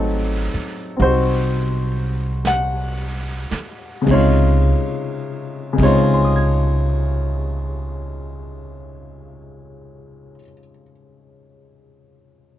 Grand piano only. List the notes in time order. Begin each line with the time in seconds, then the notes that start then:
Already playing: F#3 A3 C4 D#4 A4
0.97 C4 D#4 F#4
1.02 F#4 C5
2.47 F#5
4.02 C#3 G#3
4.08 C3 D#4 C#5
4.13 F4
5.73 C#3 G#3
5.79 C3 D#4 G#4 C#5
5.85 F4 C5
5.95 D#5
6.03 G#5
6.14 C6
6.25 D#6
6.36 G#6